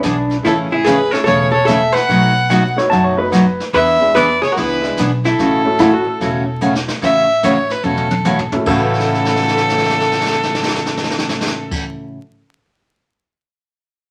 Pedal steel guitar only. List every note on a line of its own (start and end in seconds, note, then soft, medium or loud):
0.04 0.36 D4 medium
2.50 2.77 F#5 medium
2.78 2.91 C#5 medium
2.90 3.04 A5 medium
3.04 3.18 C#5 medium
3.18 3.31 B4 medium
3.32 3.65 B4 medium
5.80 5.93 E4 medium
5.93 6.06 F#4 medium
6.07 6.29 A4 medium
8.67 11.79 A4 loud